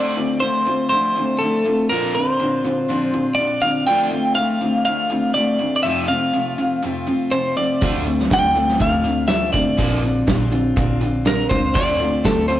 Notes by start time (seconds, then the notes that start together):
Already playing: D3 F3 A3 C4 D4 F4 D5
0.17 D3 A3 C4 F4
0.40 D3 F3 A3 C4 C5
0.45 F4
0.66 D3 A3 C4 F4
0.70 A3
0.89 D3 F3 A3 C4 C5
0.94 F4
1.15 D3 A3 C4 F4
1.20 A3
1.39 D3 F3 A3 A4
1.43 A3 C4 F4
1.65 D3 A3 F4
1.69 A3 C4
1.90 A#2 D3 F3 A#3 C4 D4 F4 A#4
2.14 A#2 D3 C4 D4 F4 C5
2.39 A#2 D3 F3 C4 D4 F4
2.64 A#2 D3 C4 D4 F4
2.88 A#2 D3 F3 C4 D4 F4
3.13 A#2 D3 C4 D4 F4
3.35 A#2 F3 C4 D5
3.39 D3 D4 F4
3.62 A#2 D3 D4 F4 F5
3.66 C4
3.87 D3 F3 A3 C4 D4 F4 G5
4.11 D3 A3 C4 F4
4.35 D3 F3 A3 F5
4.39 C4 F4
4.61 D3 A3 C4 F4
4.85 D3 F3 A3 C4 F4 F5
5.10 D3 A3 C4 F4
5.34 D3 F3 A3 C4 D5
5.38 F4
5.59 D3 A3 C4 F4
5.63 A3
5.76 D5
5.83 F2 C3 F3 A3 C4 F4 E5
6.08 F2 C3 A3 C4 F4 F5
6.12 F3
6.33 F2 C3 F3 A3 C4 F4
6.58 F2 C3 F3 A3 C4 F4
6.83 F2 C3 F3 A3 C4 F4
7.07 F2 C3 A3 C4 F4
7.11 F3
7.32 F2 C3 F3 A3 C4 F4 C5
7.56 F2 C3 F3 A3 C4 F4 D5
7.81 D2 D3 F3 A3 C4 D4 F4, kick, closed hi-hat
8.06 D3 A3 C4 F4, closed hi-hat
8.19 snare
8.29 D2 D3 F3 A3 C4 F4, kick, snare, closed hi-hat
8.34 G5
8.55 D3 A3 C4 F4, closed hi-hat
8.68 snare
8.80 D2 D3 F3 A3 C4 F4 F5, kick, closed hi-hat
9.03 D3 A3 C4 F4, closed hi-hat
9.28 D3 F3 A3 C4 E5, snare, closed hi-hat
9.32 F4
9.52 D3 A3 C4 F4 D5, kick, closed hi-hat
9.77 A#1 A#2 D3 F3 A#3 C4 D4 F4, kick, closed hi-hat
10.02 A#2 D3 C4 D4 F4, closed hi-hat
10.27 A#1 A#2 D3 F3 C4 D4 F4, kick, snare, closed hi-hat
10.51 A#2 D3 C4 D4 F4, closed hi-hat
10.76 A#1 A#2 D3 F3 C4 D4 F4, kick, closed hi-hat
11.00 A#2 D3 C4 D4 F4, closed hi-hat
11.25 A#2 D3 F3 C4 D4 F4 A#4, snare, closed hi-hat
11.49 C#2 A#2 D3 C4 D4 F4 C5, kick, closed hi-hat
11.75 D2 D3 F3 A3 C4 D4 F4 D5, kick, closed hi-hat
12.00 D3 A3 C4 F4, closed hi-hat
12.24 D2 D3 F3 A3 C4 F4 A4, kick, snare, closed hi-hat
12.48 D3 A3 C4 F4 C5, closed hi-hat